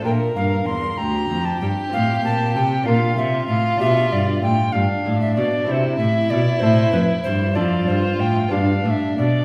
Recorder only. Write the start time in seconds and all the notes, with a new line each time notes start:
0.05 G5
0.36 F5
0.66 C6
0.98 A#5
1.45 A5
1.60 G5
1.93 F5
2.24 A5
2.56 G5
2.86 F5
3.17 E5
3.48 F5
3.80 E5
4.12 D5
4.43 G5
4.72 F5
5.20 E5
5.35 D5
5.66 D5
5.71 C5
5.98 E5
6.30 D5
6.60 C5
6.92 B4
7.24 C5
7.55 D5
7.88 C5
8.20 G5
8.52 F5
8.86 F5
8.90 E5
9.18 D5